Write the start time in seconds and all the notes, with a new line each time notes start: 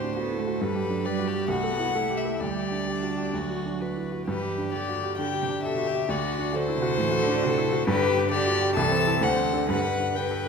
Already playing: D2 A2 C4 D4 E4 F#4 G4 C5
0.02 D4
0.16 B3 F#4 A4
0.32 E4
0.39 A3
0.47 F#4
0.61 G2 G3 B4
0.76 G4
0.82 F#3
0.90 D4
1.04 G3 G4 B4 D5
1.19 F#4
1.27 G4
1.33 G4
1.48 C2 A3 F#4 F#5
1.63 A4
1.73 B3
1.79 E4
1.95 A3 E4 A4
2.10 G4
2.17 E5
2.25 A4
2.39 D2 G3 G4 D5
2.57 G4
2.72 D4
2.87 D4 G4
3.03 F#4
3.18 G4
3.33 D2 F#3 F#4
3.50 F#4
3.66 D4
3.81 F#4 B4
3.96 E4
4.12 F#4
4.27 G2 E3 G4 B4
4.42 G4
4.58 D4
4.72 D3 G4 D5
4.89 F#4
5.03 G4
5.18 D3 G4 G5
5.33 G4
5.42 C3
5.49 D4
5.63 B2 G4 A4 E5
5.78 F#4
5.87 G4
5.93 G4
6.09 D2 D3 F#4 D5
6.24 F#4
6.38 D4
6.53 D3 F#4 A4 C5
6.68 E4
6.76 C3
6.82 F#4
6.97 A2 E3 A4
7.12 F#4
7.23 D3
7.28 D4
7.43 C3 F#4 A4
7.58 E4
7.72 F#4
7.87 G2 D3 G4 B4
8.02 G4
8.17 D4
8.31 D3 G4 D5
8.46 F#4
8.62 G4
8.76 C2 E3 A4 A5
8.91 C4
9.07 E4 A4
9.21 D2 D3 C5 F#5
9.36 C4
9.53 D4 A4
9.69 G2 D3 B4 F#5
9.85 B4
10.00 D4
10.15 D3 B4 G5
10.31 A4